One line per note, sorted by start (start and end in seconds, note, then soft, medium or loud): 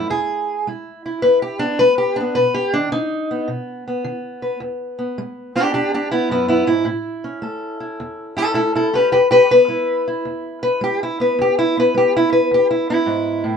0.00 0.10 E4 medium
0.10 0.62 E2 medium
0.10 0.66 G#4 loud
0.67 1.19 G#3 medium
0.67 1.05 E4 soft
1.06 1.59 E4 medium
1.22 1.75 E2 medium
1.22 1.41 B4 loud
1.42 1.60 G4 medium
1.59 2.20 B3 soft
1.59 1.78 D4 loud
1.79 2.32 G#3 medium
1.79 1.97 B4 loud
1.98 2.16 G4 medium
2.16 2.35 D4 medium
2.20 2.73 B3 soft
2.35 2.88 B2 medium
2.35 2.54 B4 loud
2.54 2.73 G4 loud
2.73 2.91 D#3 medium
2.73 2.92 D4 loud
2.92 3.44 D#3 medium
2.92 3.48 D#4 loud
3.31 3.86 B3 medium
3.48 4.00 B2 medium
3.88 4.97 B3 soft
4.04 4.57 D#3 medium
4.42 4.58 B4 medium
4.60 5.13 E2 medium
4.99 5.55 B3 soft
5.18 5.70 G#3 medium
5.55 6.11 B3 soft
5.55 5.72 D4 medium
5.55 5.73 G4 medium
5.74 6.26 E2 medium
5.74 5.92 D4 medium
5.74 5.92 G4 loud
5.94 6.12 D4 medium
5.94 6.11 G4 medium
6.11 6.30 B3 medium
6.11 6.30 E4 medium
6.30 6.66 F#2 medium
6.30 6.47 B3 medium
6.30 6.48 E4 medium
6.48 6.67 B3 medium
6.48 6.66 E4 medium
6.67 6.85 G#2 medium
6.67 6.84 E4 medium
6.85 7.38 A2 medium
6.85 7.80 E4 medium
7.24 8.37 C#4 soft
7.42 7.95 A3 medium
7.42 8.36 A4 soft
7.80 8.37 E4 soft
8.00 8.52 E2 medium
8.37 8.92 C#4 soft
8.37 8.46 E4 medium
8.37 8.54 A4 loud
8.54 9.08 A3 medium
8.54 8.60 E4 medium
8.54 8.74 A4 loud
8.75 8.87 E4 medium
8.75 8.94 A4 medium
8.93 9.09 C#4 medium
8.93 9.12 G4 medium
8.93 9.11 B4 medium
9.12 9.64 E2 medium
9.12 9.18 G4 medium
9.12 9.30 B4 medium
9.31 9.43 G4 medium
9.31 9.49 B4 loud
9.51 11.20 B3 soft
9.51 10.06 B4 loud
9.68 10.20 G#3 medium
9.68 10.07 E4 soft
10.08 11.02 E4 medium
10.25 10.77 E2 medium
10.63 10.81 B4 loud
10.81 11.33 G#3 medium
10.81 11.01 G4 medium
11.03 11.20 E4 medium
11.20 11.77 B3 medium
11.20 11.38 B4 medium
11.39 11.90 E2 medium
11.39 11.58 G4 loud
11.59 11.75 E4 loud
11.77 12.88 B3 soft
11.77 11.95 B4 loud
11.94 12.46 G#3 medium
11.94 12.14 G4 medium
12.17 12.32 E4 loud
12.33 12.50 B4 medium
12.51 13.02 E2 medium
12.51 12.70 G4 medium
12.71 12.88 E4 medium
12.90 13.57 B3 soft
12.90 13.57 E4 loud
13.06 13.43 G#2 medium
13.44 13.57 A2 medium